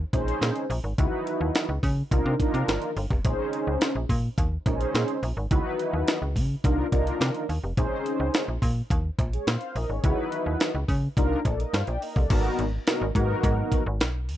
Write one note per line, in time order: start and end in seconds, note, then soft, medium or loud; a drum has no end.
0.13 0.33 A#1 medium
0.13 0.64 C#4 medium
0.13 0.64 D#4 medium
0.13 0.65 G#4 medium
0.13 0.65 C5 loud
0.13 kick medium
0.13 closed hi-hat medium
0.28 closed hi-hat medium
0.41 0.51 A#2 loud
0.41 snare loud
0.41 closed hi-hat medium
0.56 closed hi-hat medium
0.70 0.80 A#1 loud
0.70 open hi-hat medium
0.84 0.94 G#1 medium
0.98 1.08 C#2 loud
0.98 1.66 D#4 medium
0.98 1.66 E4 medium
0.98 1.67 F#4 medium
0.98 1.67 B4 loud
0.98 kick loud
0.98 closed hi-hat medium
1.27 closed hi-hat medium
1.41 1.51 D#2 medium
1.55 snare loud
1.55 closed hi-hat medium
1.69 1.79 C#2 medium
1.83 2.03 C#3 loud
1.83 kick medium
1.83 open hi-hat medium
2.11 2.21 C2 loud
2.11 2.34 D4 medium
2.11 2.34 D#4 medium
2.11 2.34 F4 medium
2.11 2.34 A#4 loud
2.11 kick loud
2.11 closed hi-hat medium
2.26 2.35 C3 loud
2.39 2.91 D4 medium
2.39 2.91 D#4 medium
2.39 2.91 F4 medium
2.39 2.91 A#4 loud
2.39 kick medium
2.39 closed hi-hat medium
2.54 2.64 C3 loud
2.54 closed hi-hat medium
2.68 2.78 G1 medium
2.68 snare loud
2.68 closed hi-hat medium
2.82 closed hi-hat medium
2.97 3.06 G1 loud
2.97 open hi-hat medium
3.10 3.20 F1 medium
3.10 kick medium
3.24 3.35 A#1 loud
3.24 3.93 C#4 medium
3.24 3.93 D#4 medium
3.24 3.93 G#4 medium
3.24 3.93 C5 loud
3.24 kick loud
3.24 closed hi-hat medium
3.53 closed hi-hat medium
3.67 3.77 C#2 medium
3.81 snare loud
3.81 closed hi-hat medium
3.95 4.05 A#1 medium
4.09 4.29 A#2 loud
4.09 kick medium
4.09 open hi-hat medium
4.38 4.58 D#2 medium
4.38 kick loud
4.38 closed hi-hat medium
4.66 4.86 A#1 medium
4.66 5.17 C#4 medium
4.66 5.17 D#4 medium
4.66 5.17 G#4 medium
4.66 4.73 A#4 medium
4.66 kick loud
4.66 closed hi-hat medium
4.73 5.21 C5 medium
4.81 closed hi-hat medium
4.94 5.04 A#2 loud
4.94 snare medium
4.94 closed hi-hat medium
5.08 closed hi-hat soft
5.23 5.33 A#1 loud
5.23 open hi-hat medium
5.37 5.47 G#1 medium
5.51 5.61 C#2 loud
5.51 6.19 D#4 medium
5.51 6.19 E4 medium
5.51 6.19 F#4 medium
5.51 6.20 B4 loud
5.51 kick loud
5.51 closed hi-hat medium
5.79 closed hi-hat medium
5.93 6.03 D#2 medium
6.08 snare loud
6.08 closed hi-hat medium
6.22 6.37 C#2 medium
6.36 6.56 C#3 loud
6.36 kick medium
6.36 open hi-hat medium
6.64 6.84 C2 loud
6.64 6.86 D4 medium
6.64 6.87 D#4 medium
6.64 6.87 F4 medium
6.64 6.87 A#4 medium
6.64 kick loud
6.64 closed hi-hat medium
6.92 7.12 C2 medium
6.92 7.44 D4 medium
6.92 7.44 D#4 medium
6.92 7.44 F4 medium
6.92 7.44 A#4 medium
6.92 kick medium
6.92 closed hi-hat medium
7.07 closed hi-hat medium
7.21 7.31 C3 loud
7.21 snare loud
7.21 closed hi-hat medium
7.35 closed hi-hat soft
7.49 7.59 D#2 medium
7.49 open hi-hat medium
7.64 7.73 F1 medium
7.77 7.87 A#1 loud
7.77 8.45 C#4 medium
7.77 8.46 D#4 medium
7.77 8.46 G#4 medium
7.77 8.46 C5 medium
7.77 kick loud
7.77 closed hi-hat medium
8.06 closed hi-hat medium
8.20 8.30 C#2 medium
8.34 snare loud
8.34 closed hi-hat medium
8.48 8.58 A#1 medium
8.62 8.82 A#2 medium
8.62 kick medium
8.62 open hi-hat medium
8.90 9.10 D#2 loud
8.90 kick loud
8.90 closed hi-hat medium
9.19 9.38 A#1 medium
9.19 kick loud
9.19 closed hi-hat medium
9.33 9.47 G#4 medium
9.33 9.46 C#5 medium
9.33 closed hi-hat medium
9.47 9.57 A#2 loud
9.47 9.74 C5 medium
9.47 9.74 F5 medium
9.47 snare loud
9.47 closed hi-hat medium
9.61 closed hi-hat soft
9.75 9.85 A#1 loud
9.75 9.89 A#4 medium
9.75 9.89 D#5 medium
9.75 open hi-hat medium
9.89 9.99 G#1 medium
9.89 10.17 G#4 medium
9.89 10.16 C#5 medium
10.03 10.14 C#2 loud
10.03 10.72 D#4 medium
10.03 10.72 E4 medium
10.03 10.72 F#4 medium
10.03 10.72 B4 medium
10.03 kick loud
10.03 closed hi-hat medium
10.32 closed hi-hat medium
10.46 10.56 D#2 medium
10.60 snare loud
10.60 closed hi-hat medium
10.75 10.84 C#2 medium
10.88 11.08 C#3 loud
10.88 kick medium
10.88 open hi-hat medium
11.17 11.37 C2 loud
11.17 11.39 D4 medium
11.17 11.40 D#4 medium
11.17 11.40 F4 medium
11.17 11.40 A#4 loud
11.17 kick loud
11.17 closed hi-hat medium
11.45 11.65 A#1 medium
11.45 11.59 A4 medium
11.45 11.59 D5 medium
11.45 kick medium
11.45 closed hi-hat medium
11.59 11.73 A#4 medium
11.59 11.73 D#5 medium
11.59 closed hi-hat medium
11.73 11.83 G2 medium
11.73 11.87 C5 medium
11.73 11.87 F5 medium
11.73 snare medium
11.73 closed hi-hat medium
11.87 11.98 A#1 medium
11.87 12.01 D5 medium
11.87 12.01 G5 medium
11.87 closed hi-hat soft
12.02 12.16 A#4 medium
12.02 12.15 D#5 medium
12.02 open hi-hat medium
12.16 12.26 C2 medium
12.16 12.43 A4 medium
12.16 12.43 D5 medium
12.16 kick medium
12.30 12.50 G#1 loud
12.30 12.64 B3 medium
12.30 12.64 D#4 medium
12.30 12.64 F#4 medium
12.30 12.64 A#4 loud
12.30 kick loud
12.30 closed hi-hat loud
12.30 crash loud
12.59 12.79 G#1 loud
12.59 closed hi-hat medium
12.86 13.04 B3 medium
12.86 13.04 D#4 medium
12.86 13.04 F#4 medium
12.86 13.04 A#4 loud
12.86 snare loud
12.86 closed hi-hat medium
13.01 13.11 G#1 loud
13.15 13.35 G#2 loud
13.15 13.83 B3 medium
13.15 13.83 D#4 medium
13.15 13.84 F#4 medium
13.15 13.84 A#4 loud
13.15 kick medium
13.15 closed hi-hat medium
13.43 13.63 G#2 loud
13.43 kick loud
13.43 closed hi-hat loud
13.72 kick loud
13.72 closed hi-hat medium
13.86 14.02 G#1 loud
14.00 14.30 B1 loud
14.00 snare loud
14.00 closed hi-hat medium
14.28 14.37 D#2 medium
14.28 open hi-hat medium